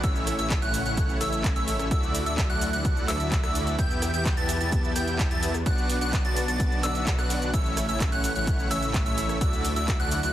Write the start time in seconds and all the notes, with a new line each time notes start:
Already playing: downlifter
0.04 A1 C#3 A3 C#4 E4 C#5 E5 E6, kick, closed hi-hat, shaker
0.16 shaker
0.27 cross-stick, open hi-hat, shaker
0.39 A1 A3 C#4 E4 C#5 E5 E6, closed hi-hat, shaker
0.50 kick, clap, closed hi-hat, shaker
0.62 A1 A3 C#4 E4 C#5 F#5 F#6, closed hi-hat, shaker
0.74 open hi-hat, shaker
0.85 A1 A3 C#4 E4 C#5 F#5 F#6, closed hi-hat, shaker
0.97 kick, closed hi-hat, shaker
1.09 shaker
1.21 A1 A3 C#4 E4 C#5 E5 E6, cross-stick, open hi-hat, shaker
1.33 closed hi-hat, shaker
1.44 kick, clap, closed hi-hat, shaker
1.56 A1 A3 C#4 E4 C#5 E5 E6, closed hi-hat, shaker
1.68 open hi-hat, shaker
1.79 cross-stick, closed hi-hat, shaker
1.91 D2 D3 F#3 A3 E4 F#4 D5 E5 E6, kick, closed hi-hat, shaker
2.03 shaker
2.15 open hi-hat, shaker
2.26 D2 A3 E4 F#4 D5 E5 E6, closed hi-hat, shaker
2.38 kick, clap, closed hi-hat, shaker
2.50 D2 A3 E4 F#4 D5 F#5 F#6, closed hi-hat, shaker
2.61 open hi-hat, shaker
2.73 D2 A3 E4 F#4 D5 F#5 F#6, closed hi-hat, shaker
2.85 kick, closed hi-hat, shaker
2.97 shaker
3.08 D2 A3 E4 F#4 D5 E5 E6, cross-stick, clap, open hi-hat, shaker
3.20 closed hi-hat, shaker
3.32 kick, clap, closed hi-hat, shaker
3.43 D2 A3 E4 F#4 D5 E5 E6, cross-stick, closed hi-hat, shaker
3.55 open hi-hat, shaker
3.67 closed hi-hat, shaker
3.78 E2 E3 B3 E4 G4 E5 G5 G6, kick, closed hi-hat, shaker
3.91 shaker
4.02 cross-stick, open hi-hat, shaker
4.14 E2 B3 E4 G4 E5 G5 G6, closed hi-hat, shaker
4.25 kick, clap, closed hi-hat, shaker
4.37 E2 B3 E4 G4 E5 A5 A6, closed hi-hat, shaker
4.49 open hi-hat, shaker
4.61 E2 B3 E4 G4 E5 A5 A6, closed hi-hat, shaker
4.72 kick, closed hi-hat, shaker
4.84 shaker
4.96 E2 B3 E4 G4 E5 G5 G6, cross-stick, open hi-hat, shaker
5.08 closed hi-hat, shaker
5.19 kick, clap, closed hi-hat, shaker
5.31 E2 B3 E4 G4 E5 A5 A6, closed hi-hat, shaker
5.43 open hi-hat, shaker
5.54 cross-stick, closed hi-hat, shaker
5.66 B1 D3 B3 D4 F#4 D5 F#5 F#6, kick, closed hi-hat, shaker
5.78 shaker
5.90 open hi-hat, shaker
6.01 B1 B3 D4 F#4 D5 F#5 F#6, closed hi-hat, shaker
6.13 kick, clap, closed hi-hat, shaker
6.25 B1 B3 D4 F#4 D5 A5 A6, closed hi-hat, shaker
6.36 open hi-hat, shaker
6.48 B1 B3 D4 F#4 D5 A5 A6, closed hi-hat, shaker
6.60 kick, closed hi-hat, shaker
6.72 shaker
6.83 B1 B3 D4 F#4 D5 E5 E6, cross-stick, clap, open hi-hat, shaker
6.95 closed hi-hat, shaker
7.07 kick, clap, closed hi-hat, shaker
7.18 B1 B3 D4 F#4 D5 F#5 F#6, cross-stick, closed hi-hat, shaker
7.30 open hi-hat, shaker
7.42 closed hi-hat, shaker
7.54 A1 C#3 A3 C#4 E4 C#5 E5 E6, kick, closed hi-hat, shaker
7.66 shaker
7.77 cross-stick, open hi-hat, shaker
7.89 A1 A3 C#4 E4 C#5 E5 E6, closed hi-hat, shaker
8.00 kick, clap, closed hi-hat, shaker
8.12 A1 A3 C#4 E4 C#5 F#5 F#6, closed hi-hat, shaker
8.24 open hi-hat, shaker
8.36 A1 A3 C#4 E4 C#5 F#5 F#6, closed hi-hat, shaker
8.47 kick, closed hi-hat, shaker
8.59 shaker
8.71 A1 A3 C#4 E4 C#5 E5 E6, cross-stick, open hi-hat, shaker
8.82 closed hi-hat, shaker
8.94 kick, clap, closed hi-hat, shaker
9.06 A1 A3 C#4 E4 C#5 E5 E6, closed hi-hat, shaker
9.18 open hi-hat, shaker
9.29 cross-stick, closed hi-hat, shaker
9.41 D2 D3 F#3 A3 E4 F#4 D5 E5 E6, kick, closed hi-hat, shaker
9.53 shaker
9.65 open hi-hat, shaker
9.76 D2 A3 E4 F#4 D5 E5 E6, closed hi-hat, shaker
9.88 kick, clap, closed hi-hat, shaker
10.00 D2 A3 E4 F#4 D5 F#5 F#6, closed hi-hat, shaker
10.11 open hi-hat, shaker
10.23 D2 A3 E4 F#4 D5 F#5 F#6, closed hi-hat, shaker